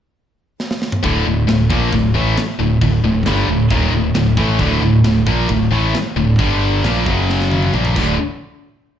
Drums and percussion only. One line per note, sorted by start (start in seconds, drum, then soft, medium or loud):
0.60 snare medium
0.71 snare medium
0.82 snare medium
0.92 mid tom loud
1.04 kick loud
1.04 china medium
1.48 snare loud
1.48 china medium
1.70 kick medium
1.93 kick loud
1.93 china medium
2.37 snare loud
2.37 china medium
2.81 kick medium
2.81 china medium
3.26 snare loud
3.26 china medium
3.70 kick loud
3.70 china medium
4.14 snare loud
4.14 china medium
4.37 kick loud
4.59 kick loud
4.59 china medium
5.04 snare loud
5.04 china medium
5.27 kick loud
5.49 kick medium
5.49 china medium
5.94 snare loud
5.94 china medium
6.39 kick medium
6.39 china medium
6.84 snare loud
6.84 china medium
7.06 kick loud
7.30 snare medium
7.41 snare medium
7.51 high tom medium
7.63 high tom medium
7.74 mid tom medium
7.85 mid tom medium
7.96 kick loud
7.96 crash medium